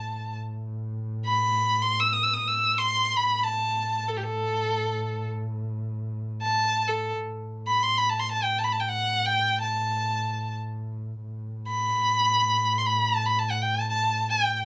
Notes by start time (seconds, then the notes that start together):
Already playing: A2 A5
1.26 B5
1.82 C6
2.00 E6
2.13 D#6
2.23 E6
2.34 D#6
2.47 E6
2.78 C6
3.17 B5
3.22 A2
3.44 A5
4.08 A4
4.17 G4
4.23 A4
6.42 A5
6.88 A4
7.22 A2
7.67 B5
7.83 C6
7.98 B5
8.10 A5
8.19 C6
8.32 A5
8.43 G5
8.58 A5
8.64 B5
8.72 A5
8.80 G5
8.89 F#5
9.26 G5
9.62 A5
11.21 A2
11.68 B5
12.78 C6
12.86 B5
13.09 A5
13.26 B5
13.39 A5
13.51 F#5
13.62 G5
13.75 A5
13.89 A5
14.30 G5